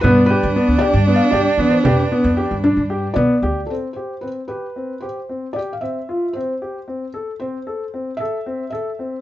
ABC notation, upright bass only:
X:1
M:7/8
L:1/16
Q:1/4=114
K:Am
V:1 name="Upright bass" clef=bass
G,,3 G,, z D,, z G,,2 z G,, z E,2 | F,,2 z F,,2 G,,2 G,,3 B,, z D,,2 | z12 z2 | z12 z2 |
z12 z2 |]